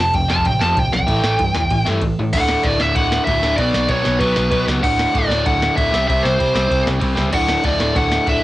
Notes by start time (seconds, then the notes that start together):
Already playing: F2 C3
0.00 A5
0.14 F1 F2 C3 G5, kick, ride
0.29 F1 F2 C3 F3 A5, snare
0.38 kick
0.45 A1 F2 C3 G5, kick, ride
0.60 F1 F2 C3 F3 A5, snare
0.76 D1 F2 C3 G5, kick, ride
0.93 B1 F2 C3 G5, snare
1.01 kick
1.06 A1 A2 E3 A3, kick, ride
1.22 A1 A2 E3 A3, snare
1.38 G2 A2 E3, kick, ride
1.55 E2 A2 E3, snare
1.63 kick
1.70 A1 A2 E3, kick, ride
1.85 G2 A2 E3 A3, snare
2.01 A1 A2 E3, kick, ride
2.19 A2 E3
2.33 D1 D2 A2 D3 F#5, kick, crash, ride
2.48 snare
2.63 D1 D2 A2 D3 D5, kick, ride
2.79 D1 D2 A2 D3 E5, snare
2.95 D1 D2 A2 D3 F#5, kick, ride
3.12 snare
3.24 D1 D2 A2 D3 E5, kick, ride
3.42 D1 D2 A2 D3, snare
3.56 B1 B2 F#3 B3 D5, kick, ride
3.74 B1, snare
3.88 B1 B2 F#3 B3 C#5, kick, ride
4.03 B1 B2 F#3 B3, snare
4.20 B1 B2 F#3 B3 B4, kick, ride
4.36 B1, snare
4.51 B1 B2 F#3 B3, kick, ride
4.67 C#2 B2 F#3 B3, snare
4.82 D1 D2 A2 D3 F#5, kick, crash
4.99 snare
5.13 D1 D2 A2 D3 D5, kick, ride
5.28 D1 D2 A2 D3, snare
5.45 D1 D2 A2 D3 F#5, kick, ride
5.62 snare
5.76 D1 D2 A2 D3 E5, kick, ride
5.91 C2 C3 G3 C4, snare
6.07 C2 C3 G3 C4 E5, kick, ride
6.23 C2 C5, snare
6.38 C2 C3 G3 C4, kick, ride
6.54 C2 C3 G3 C4, snare
6.68 C2 C3 G3 C4, kick, ride
6.87 C2, snare
7.00 C2 C3 G3 C4, kick, ride
7.15 C#2 C3 G3 C4, snare
7.31 D1 D2 A2 D3 F#5, kick, crash
7.49 snare
7.63 D1 D2 A2 D3 D5, kick, ride
7.79 D1 D2 A2 D3, snare
7.94 D1 D2 A2 D3 F#5, kick, ride
8.12 snare
8.27 D1 D2 A2 D3 E5, kick, ride